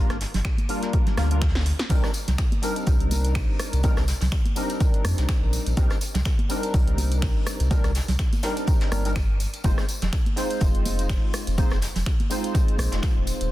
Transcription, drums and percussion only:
0.10 cross-stick, snare, closed hi-hat
0.21 snare, closed hi-hat, open hi-hat
0.34 snare, open hi-hat, low conga
0.45 finger snap, kick, snare, closed hi-hat
0.58 closed hi-hat, high conga
0.69 closed hi-hat, open hi-hat
0.82 snare, closed hi-hat
0.93 kick, closed hi-hat
1.06 snare, closed hi-hat, low conga
1.17 cross-stick, snare, closed hi-hat, open hi-hat, high conga
1.31 closed hi-hat
1.42 finger snap, kick, snare, closed hi-hat
1.49 snare, closed hi-hat
1.55 snare, closed hi-hat
1.60 snare, closed hi-hat
1.65 closed hi-hat, open hi-hat
1.79 snare, closed hi-hat
1.89 kick, closed hi-hat, tambourine, high conga
2.03 cross-stick, snare, tambourine
2.14 closed hi-hat, open hi-hat, tambourine
2.28 snare, closed hi-hat, tambourine, low conga
2.38 finger snap, kick, snare, closed hi-hat, tambourine
2.52 closed hi-hat, high conga
2.62 snare, closed hi-hat, open hi-hat, tambourine
2.76 closed hi-hat, tambourine
2.87 kick, closed hi-hat, tambourine
3.00 closed hi-hat
3.11 closed hi-hat, open hi-hat, tambourine, high conga
3.24 closed hi-hat, tambourine
3.35 finger snap, kick, snare, closed hi-hat, open hi-hat, tambourine
3.59 cross-stick, closed hi-hat, open hi-hat, tambourine
3.73 closed hi-hat, tambourine
3.83 kick, closed hi-hat, tambourine, high conga
3.97 cross-stick, snare, tambourine
4.08 snare, closed hi-hat, open hi-hat, tambourine
4.21 snare, open hi-hat, tambourine, low conga
4.32 finger snap, kick, snare, closed hi-hat, tambourine
4.45 closed hi-hat, high conga
4.56 closed hi-hat, open hi-hat, tambourine
4.69 closed hi-hat, tambourine
4.80 kick, closed hi-hat, tambourine
4.94 closed hi-hat
5.05 cross-stick, closed hi-hat, open hi-hat, tambourine, high conga
5.18 snare, closed hi-hat, tambourine
5.29 finger snap, kick, snare, closed hi-hat, tambourine
5.53 closed hi-hat, open hi-hat, tambourine
5.67 closed hi-hat, tambourine
5.77 kick, closed hi-hat, tambourine, high conga
5.90 cross-stick, snare, tambourine
6.01 closed hi-hat, open hi-hat, tambourine
6.14 snare, closed hi-hat, tambourine, low conga
6.25 finger snap, kick, snare, closed hi-hat, tambourine
6.39 closed hi-hat, high conga
6.50 closed hi-hat, open hi-hat, tambourine
6.63 closed hi-hat, tambourine
6.74 kick, closed hi-hat, tambourine
6.88 closed hi-hat
6.98 closed hi-hat, open hi-hat, tambourine, high conga
7.12 closed hi-hat, tambourine
7.22 finger snap, kick, snare, closed hi-hat, open hi-hat, tambourine
7.47 cross-stick, closed hi-hat, open hi-hat, tambourine
7.60 closed hi-hat, tambourine
7.71 kick, closed hi-hat, tambourine, high conga
7.84 cross-stick, snare, closed hi-hat, tambourine
7.94 snare, closed hi-hat, open hi-hat, tambourine
8.08 snare, open hi-hat, tambourine, low conga
8.19 finger snap, kick, snare, closed hi-hat, tambourine
8.32 closed hi-hat, tambourine, high conga
8.43 snare, closed hi-hat, open hi-hat, tambourine
8.57 closed hi-hat, tambourine
8.67 kick, closed hi-hat, tambourine
8.80 snare, closed hi-hat
8.92 cross-stick, closed hi-hat, open hi-hat, tambourine, high conga
9.05 closed hi-hat, tambourine
9.16 finger snap, kick, snare, closed hi-hat, tambourine
9.29 closed hi-hat
9.40 closed hi-hat, open hi-hat, tambourine
9.53 closed hi-hat, tambourine
9.64 kick, closed hi-hat, tambourine, high conga
9.78 cross-stick, snare, tambourine
9.89 closed hi-hat, open hi-hat, tambourine
10.02 snare, closed hi-hat, tambourine, low conga
10.13 finger snap, kick, snare, closed hi-hat, tambourine
10.26 closed hi-hat, high conga
10.36 snare, closed hi-hat, open hi-hat, tambourine
10.50 closed hi-hat, tambourine
10.60 kick, closed hi-hat, tambourine
10.75 closed hi-hat
10.85 closed hi-hat, open hi-hat, tambourine, high conga
10.99 closed hi-hat, tambourine
11.10 finger snap, kick, snare, closed hi-hat, open hi-hat, tambourine
11.34 cross-stick, closed hi-hat, open hi-hat, tambourine
11.47 closed hi-hat, tambourine
11.58 kick, closed hi-hat, tambourine, high conga
11.70 cross-stick, snare, tambourine
11.82 snare, closed hi-hat, open hi-hat, tambourine
11.95 snare, open hi-hat, tambourine, low conga
12.06 finger snap, kick, snare, closed hi-hat
12.20 closed hi-hat, high conga
12.31 closed hi-hat, open hi-hat, tambourine
12.44 closed hi-hat, tambourine
12.55 kick, closed hi-hat, tambourine
12.68 closed hi-hat
12.78 cross-stick, closed hi-hat, open hi-hat, tambourine, high conga
12.92 snare, closed hi-hat, tambourine
13.03 finger snap, kick, snare, closed hi-hat, tambourine
13.27 closed hi-hat, open hi-hat, tambourine
13.41 closed hi-hat, tambourine

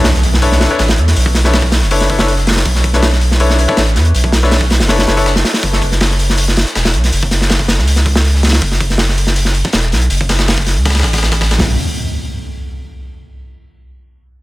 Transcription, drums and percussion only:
0.04 snare, closed hi-hat, open hi-hat
0.14 snare
0.23 closed hi-hat, open hi-hat
0.34 snare
0.42 closed hi-hat, open hi-hat
0.52 snare
0.60 snare, closed hi-hat, open hi-hat
0.70 snare, closed hi-hat
0.79 snare, closed hi-hat, open hi-hat
0.88 snare, open hi-hat
0.98 closed hi-hat
1.07 snare, open hi-hat
1.16 open hi-hat
1.26 kick
1.35 snare, closed hi-hat, open hi-hat
1.44 snare
1.53 snare, closed hi-hat, open hi-hat
1.62 kick, snare
1.72 snare, closed hi-hat, open hi-hat
1.82 snare
1.91 closed hi-hat, open hi-hat
2.01 snare, closed hi-hat
2.10 kick, snare, open hi-hat
2.19 snare, closed hi-hat
2.28 closed hi-hat, open hi-hat
2.38 snare
2.47 snare, closed hi-hat, open hi-hat
2.51 snare, open hi-hat
2.56 snare, open hi-hat
2.65 kick, closed hi-hat, open hi-hat
2.75 snare
2.84 kick, closed hi-hat, open hi-hat
2.93 snare, closed hi-hat
3.03 snare, closed hi-hat, open hi-hat
3.12 snare
3.21 closed hi-hat, open hi-hat
3.31 snare
3.40 closed hi-hat, open hi-hat
3.50 snare
3.59 closed hi-hat, open hi-hat
3.68 kick, snare
3.77 snare, closed hi-hat, open hi-hat
3.87 snare, closed hi-hat
3.95 snare, closed hi-hat, open hi-hat
4.05 closed hi-hat
4.15 open hi-hat
4.24 kick
4.32 snare, closed hi-hat, open hi-hat
4.43 snare
4.51 snare, closed hi-hat, open hi-hat
4.61 kick, snare
4.70 snare, closed hi-hat, open hi-hat
4.80 snare, open hi-hat
4.88 snare, closed hi-hat, open hi-hat
4.98 snare, open hi-hat
5.08 snare, closed hi-hat
5.17 snare, open hi-hat
5.26 snare, closed hi-hat
5.36 snare, closed hi-hat
5.45 snare, closed hi-hat, open hi-hat
5.54 snare, open hi-hat
5.63 kick, closed hi-hat, open hi-hat
5.73 snare
5.82 kick, closed hi-hat, open hi-hat
5.92 snare, closed hi-hat
6.00 snare, closed hi-hat, open hi-hat
6.10 snare
6.19 closed hi-hat, open hi-hat
6.30 snare
6.38 closed hi-hat, open hi-hat
6.48 snare
6.57 snare, closed hi-hat, open hi-hat
6.66 snare, closed hi-hat
6.75 snare, closed hi-hat, open hi-hat
6.85 snare, open hi-hat
6.94 closed hi-hat
7.04 snare, open hi-hat
7.12 open hi-hat
7.23 kick
7.31 snare, closed hi-hat, open hi-hat
7.41 snare
7.50 snare, closed hi-hat, open hi-hat
7.59 kick, snare
7.68 snare, closed hi-hat, open hi-hat
7.78 snare
7.87 closed hi-hat, open hi-hat
7.96 snare, closed hi-hat
8.06 kick, snare, open hi-hat
8.15 snare, closed hi-hat
8.24 closed hi-hat, open hi-hat
8.34 snare
8.43 snare, closed hi-hat, open hi-hat
8.48 snare, open hi-hat
8.53 snare, open hi-hat
8.62 kick, closed hi-hat, open hi-hat
8.72 snare
8.81 kick, closed hi-hat, open hi-hat
8.90 snare, closed hi-hat
8.98 snare, closed hi-hat, open hi-hat
9.09 snare
9.17 closed hi-hat, open hi-hat
9.27 snare
9.36 closed hi-hat, open hi-hat
9.45 snare
9.54 closed hi-hat, open hi-hat
9.65 kick, snare
9.73 snare, closed hi-hat, open hi-hat
9.83 snare, closed hi-hat
9.92 snare, closed hi-hat, open hi-hat
10.01 closed hi-hat
10.10 open hi-hat
10.21 kick
10.29 snare, closed hi-hat, open hi-hat
10.39 snare, closed hi-hat
10.48 snare, closed hi-hat, open hi-hat
10.58 kick, snare
10.66 snare, closed hi-hat, open hi-hat
10.85 kick, snare, closed hi-hat, open hi-hat
10.90 snare, closed hi-hat
10.95 snare, closed hi-hat
11.00 kick, snare, closed hi-hat
11.04 snare, closed hi-hat, open hi-hat
11.13 kick, snare, closed hi-hat, open hi-hat
11.18 snare, closed hi-hat
11.23 snare, closed hi-hat
11.32 kick, snare, closed hi-hat, open hi-hat
11.41 kick, snare, closed hi-hat, open hi-hat
11.51 snare, closed hi-hat
11.60 kick, snare, open hi-hat

